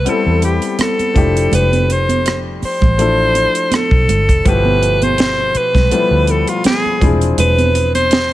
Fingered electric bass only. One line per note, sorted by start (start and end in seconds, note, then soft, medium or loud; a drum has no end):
0.06 muted fingered electric bass stroke soft
0.26 0.58 E2 medium
1.16 1.47 F1 medium
1.52 2.58 F1 loud
2.62 muted fingered electric bass stroke soft
2.82 3.45 A1 medium
3.91 4.06 B1 medium
4.09 4.29 G1 medium
4.29 4.43 F1 medium
4.46 5.51 G1 loud
5.55 muted fingered electric bass stroke soft
5.75 5.89 B1 medium
5.91 muted fingered electric bass stroke soft
6.11 6.43 D2 medium
7.01 7.33 E1 medium
7.37 8.33 E1 loud